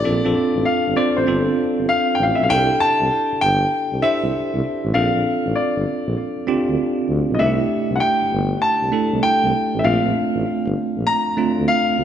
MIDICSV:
0, 0, Header, 1, 4, 480
1, 0, Start_track
1, 0, Tempo, 612245
1, 38, Time_signature, 4, 2, 24, 8
1, 9440, End_track
2, 0, Start_track
2, 0, Title_t, "Grand piano"
2, 0, Program_c, 0, 0
2, 0, Note_on_c, 0, 74, 113
2, 513, Note_on_c, 0, 77, 88
2, 539, Note_off_c, 0, 74, 0
2, 757, Note_on_c, 0, 74, 83
2, 762, Note_off_c, 0, 77, 0
2, 914, Note_on_c, 0, 72, 73
2, 920, Note_off_c, 0, 74, 0
2, 1445, Note_off_c, 0, 72, 0
2, 1480, Note_on_c, 0, 77, 100
2, 1685, Note_on_c, 0, 79, 80
2, 1694, Note_off_c, 0, 77, 0
2, 1749, Note_on_c, 0, 77, 79
2, 1751, Note_off_c, 0, 79, 0
2, 1844, Note_off_c, 0, 77, 0
2, 1845, Note_on_c, 0, 76, 82
2, 1908, Note_off_c, 0, 76, 0
2, 1908, Note_on_c, 0, 77, 75
2, 1957, Note_off_c, 0, 77, 0
2, 1960, Note_on_c, 0, 79, 109
2, 2198, Note_on_c, 0, 81, 113
2, 2206, Note_off_c, 0, 79, 0
2, 2676, Note_on_c, 0, 79, 107
2, 2692, Note_off_c, 0, 81, 0
2, 3155, Note_on_c, 0, 76, 96
2, 3171, Note_off_c, 0, 79, 0
2, 3874, Note_on_c, 0, 77, 94
2, 3898, Note_off_c, 0, 76, 0
2, 4355, Note_on_c, 0, 74, 73
2, 4370, Note_off_c, 0, 77, 0
2, 5285, Note_off_c, 0, 74, 0
2, 5759, Note_on_c, 0, 75, 69
2, 5796, Note_on_c, 0, 76, 92
2, 5797, Note_off_c, 0, 75, 0
2, 6208, Note_off_c, 0, 76, 0
2, 6238, Note_on_c, 0, 78, 69
2, 6274, Note_on_c, 0, 79, 94
2, 6276, Note_off_c, 0, 78, 0
2, 6725, Note_off_c, 0, 79, 0
2, 6756, Note_on_c, 0, 81, 99
2, 7235, Note_on_c, 0, 79, 100
2, 7251, Note_off_c, 0, 81, 0
2, 7677, Note_on_c, 0, 76, 72
2, 7692, Note_off_c, 0, 79, 0
2, 7716, Note_off_c, 0, 76, 0
2, 7717, Note_on_c, 0, 77, 92
2, 8676, Note_on_c, 0, 82, 99
2, 8706, Note_off_c, 0, 77, 0
2, 9156, Note_on_c, 0, 77, 102
2, 9171, Note_off_c, 0, 82, 0
2, 9440, Note_off_c, 0, 77, 0
2, 9440, End_track
3, 0, Start_track
3, 0, Title_t, "Tine electric piano"
3, 0, Program_c, 1, 4
3, 0, Control_c, 1, 64, 127
3, 33, Note_on_c, 1, 60, 68
3, 37, Note_on_c, 1, 62, 63
3, 40, Note_on_c, 1, 65, 67
3, 42, Note_on_c, 1, 69, 80
3, 47, Control_c, 1, 64, 0
3, 180, Note_off_c, 1, 60, 0
3, 182, Note_off_c, 1, 62, 0
3, 183, Note_off_c, 1, 65, 0
3, 183, Control_c, 1, 64, 127
3, 185, Note_off_c, 1, 69, 0
3, 193, Note_on_c, 1, 60, 75
3, 196, Note_on_c, 1, 62, 64
3, 199, Note_on_c, 1, 65, 67
3, 202, Note_on_c, 1, 69, 77
3, 721, Note_off_c, 1, 60, 0
3, 723, Note_off_c, 1, 62, 0
3, 724, Note_off_c, 1, 65, 0
3, 726, Note_off_c, 1, 69, 0
3, 754, Note_on_c, 1, 60, 74
3, 757, Note_on_c, 1, 62, 66
3, 760, Note_on_c, 1, 65, 61
3, 762, Note_on_c, 1, 72, 75
3, 985, Note_off_c, 1, 60, 0
3, 989, Note_off_c, 1, 62, 0
3, 991, Note_off_c, 1, 65, 0
3, 995, Note_on_c, 1, 60, 70
3, 998, Note_on_c, 1, 62, 70
3, 1000, Note_off_c, 1, 72, 0
3, 1001, Note_on_c, 1, 65, 63
3, 1005, Note_on_c, 1, 69, 81
3, 1007, Control_c, 1, 64, 0
3, 1133, Control_c, 1, 64, 127
3, 1900, Note_off_c, 1, 60, 0
3, 1902, Note_off_c, 1, 62, 0
3, 1903, Note_off_c, 1, 65, 0
3, 1905, Note_off_c, 1, 69, 0
3, 1953, Note_on_c, 1, 62, 80
3, 1956, Note_on_c, 1, 64, 70
3, 1960, Note_on_c, 1, 67, 62
3, 1963, Note_on_c, 1, 69, 80
3, 1966, Control_c, 1, 64, 0
3, 2083, Control_c, 1, 64, 127
3, 2859, Note_off_c, 1, 62, 0
3, 2861, Note_off_c, 1, 64, 0
3, 2863, Note_off_c, 1, 67, 0
3, 2864, Note_off_c, 1, 69, 0
3, 3153, Note_on_c, 1, 62, 71
3, 3157, Note_on_c, 1, 64, 68
3, 3160, Note_on_c, 1, 67, 66
3, 3164, Note_on_c, 1, 72, 79
3, 3833, Note_off_c, 1, 62, 0
3, 3835, Note_off_c, 1, 64, 0
3, 3837, Note_off_c, 1, 67, 0
3, 3839, Note_off_c, 1, 72, 0
3, 3871, Note_on_c, 1, 60, 75
3, 3875, Note_on_c, 1, 62, 67
3, 3878, Note_on_c, 1, 65, 69
3, 3882, Note_on_c, 1, 69, 76
3, 3887, Control_c, 1, 64, 0
3, 4002, Control_c, 1, 64, 127
3, 4778, Note_off_c, 1, 60, 0
3, 4780, Note_off_c, 1, 62, 0
3, 4782, Note_off_c, 1, 65, 0
3, 4783, Note_off_c, 1, 69, 0
3, 5074, Note_on_c, 1, 60, 85
3, 5077, Note_on_c, 1, 62, 76
3, 5080, Note_on_c, 1, 65, 81
3, 5083, Note_on_c, 1, 67, 95
3, 5754, Note_off_c, 1, 60, 0
3, 5755, Note_off_c, 1, 62, 0
3, 5757, Note_off_c, 1, 65, 0
3, 5758, Note_off_c, 1, 67, 0
3, 5793, Note_on_c, 1, 57, 76
3, 5796, Note_on_c, 1, 62, 70
3, 5799, Note_on_c, 1, 63, 57
3, 5802, Note_on_c, 1, 67, 77
3, 5809, Control_c, 1, 64, 0
3, 5850, Note_on_c, 1, 64, 74
3, 5865, Note_off_c, 1, 63, 0
3, 5926, Control_c, 1, 64, 127
3, 6699, Note_off_c, 1, 57, 0
3, 6701, Note_off_c, 1, 62, 0
3, 6704, Note_off_c, 1, 67, 0
3, 6728, Note_off_c, 1, 64, 0
3, 6992, Note_on_c, 1, 57, 72
3, 6994, Note_on_c, 1, 62, 66
3, 6997, Note_on_c, 1, 64, 66
3, 7000, Note_on_c, 1, 69, 80
3, 7673, Note_off_c, 1, 57, 0
3, 7674, Note_off_c, 1, 62, 0
3, 7675, Note_off_c, 1, 64, 0
3, 7677, Note_off_c, 1, 69, 0
3, 7712, Note_on_c, 1, 57, 71
3, 7715, Note_on_c, 1, 60, 67
3, 7718, Note_on_c, 1, 62, 65
3, 7721, Note_on_c, 1, 65, 84
3, 7728, Control_c, 1, 64, 0
3, 7857, Control_c, 1, 64, 127
3, 8619, Note_off_c, 1, 57, 0
3, 8620, Note_off_c, 1, 60, 0
3, 8622, Note_off_c, 1, 62, 0
3, 8623, Note_off_c, 1, 65, 0
3, 8913, Note_on_c, 1, 57, 74
3, 8915, Note_on_c, 1, 60, 66
3, 8919, Note_on_c, 1, 62, 69
3, 8922, Note_on_c, 1, 65, 80
3, 9440, Note_off_c, 1, 57, 0
3, 9440, Note_off_c, 1, 60, 0
3, 9440, Note_off_c, 1, 62, 0
3, 9440, Note_off_c, 1, 65, 0
3, 9440, End_track
4, 0, Start_track
4, 0, Title_t, "Tuba"
4, 0, Program_c, 2, 58
4, 39, Note_on_c, 2, 34, 100
4, 155, Note_off_c, 2, 34, 0
4, 196, Note_on_c, 2, 34, 93
4, 256, Note_off_c, 2, 34, 0
4, 437, Note_on_c, 2, 33, 82
4, 496, Note_off_c, 2, 33, 0
4, 679, Note_on_c, 2, 31, 80
4, 738, Note_off_c, 2, 31, 0
4, 918, Note_on_c, 2, 33, 90
4, 977, Note_off_c, 2, 33, 0
4, 1000, Note_on_c, 2, 31, 100
4, 1175, Note_off_c, 2, 31, 0
4, 1241, Note_on_c, 2, 31, 47
4, 1303, Note_off_c, 2, 31, 0
4, 1398, Note_on_c, 2, 31, 87
4, 1457, Note_off_c, 2, 31, 0
4, 1718, Note_on_c, 2, 33, 97
4, 1834, Note_off_c, 2, 33, 0
4, 1877, Note_on_c, 2, 35, 89
4, 1936, Note_off_c, 2, 35, 0
4, 1958, Note_on_c, 2, 36, 106
4, 2134, Note_off_c, 2, 36, 0
4, 2357, Note_on_c, 2, 36, 93
4, 2416, Note_off_c, 2, 36, 0
4, 2597, Note_on_c, 2, 31, 46
4, 2629, Note_off_c, 2, 31, 0
4, 2678, Note_on_c, 2, 31, 104
4, 2854, Note_off_c, 2, 31, 0
4, 3077, Note_on_c, 2, 36, 83
4, 3137, Note_off_c, 2, 36, 0
4, 3317, Note_on_c, 2, 36, 91
4, 3377, Note_off_c, 2, 36, 0
4, 3399, Note_on_c, 2, 36, 50
4, 3462, Note_off_c, 2, 36, 0
4, 3558, Note_on_c, 2, 36, 94
4, 3617, Note_off_c, 2, 36, 0
4, 3798, Note_on_c, 2, 33, 98
4, 3857, Note_off_c, 2, 33, 0
4, 3879, Note_on_c, 2, 34, 110
4, 3995, Note_off_c, 2, 34, 0
4, 4038, Note_on_c, 2, 34, 93
4, 4097, Note_off_c, 2, 34, 0
4, 4278, Note_on_c, 2, 33, 87
4, 4337, Note_off_c, 2, 33, 0
4, 4518, Note_on_c, 2, 31, 90
4, 4577, Note_off_c, 2, 31, 0
4, 4757, Note_on_c, 2, 34, 89
4, 4817, Note_off_c, 2, 34, 0
4, 5080, Note_on_c, 2, 38, 47
4, 5143, Note_off_c, 2, 38, 0
4, 5239, Note_on_c, 2, 38, 86
4, 5298, Note_off_c, 2, 38, 0
4, 5559, Note_on_c, 2, 38, 96
4, 5675, Note_off_c, 2, 38, 0
4, 5719, Note_on_c, 2, 35, 98
4, 5778, Note_off_c, 2, 35, 0
4, 5799, Note_on_c, 2, 36, 104
4, 5975, Note_off_c, 2, 36, 0
4, 6198, Note_on_c, 2, 36, 93
4, 6257, Note_off_c, 2, 36, 0
4, 6437, Note_on_c, 2, 31, 49
4, 6470, Note_off_c, 2, 31, 0
4, 6519, Note_on_c, 2, 31, 109
4, 6695, Note_off_c, 2, 31, 0
4, 6919, Note_on_c, 2, 36, 77
4, 6978, Note_off_c, 2, 36, 0
4, 7157, Note_on_c, 2, 36, 88
4, 7217, Note_off_c, 2, 36, 0
4, 7241, Note_on_c, 2, 36, 49
4, 7303, Note_off_c, 2, 36, 0
4, 7398, Note_on_c, 2, 36, 96
4, 7457, Note_off_c, 2, 36, 0
4, 7639, Note_on_c, 2, 33, 93
4, 7698, Note_off_c, 2, 33, 0
4, 7720, Note_on_c, 2, 34, 112
4, 7836, Note_off_c, 2, 34, 0
4, 7879, Note_on_c, 2, 34, 92
4, 7938, Note_off_c, 2, 34, 0
4, 8118, Note_on_c, 2, 33, 94
4, 8177, Note_off_c, 2, 33, 0
4, 8358, Note_on_c, 2, 31, 92
4, 8417, Note_off_c, 2, 31, 0
4, 8597, Note_on_c, 2, 34, 83
4, 8657, Note_off_c, 2, 34, 0
4, 8920, Note_on_c, 2, 38, 47
4, 8983, Note_off_c, 2, 38, 0
4, 9077, Note_on_c, 2, 38, 87
4, 9137, Note_off_c, 2, 38, 0
4, 9399, Note_on_c, 2, 38, 87
4, 9440, Note_off_c, 2, 38, 0
4, 9440, End_track
0, 0, End_of_file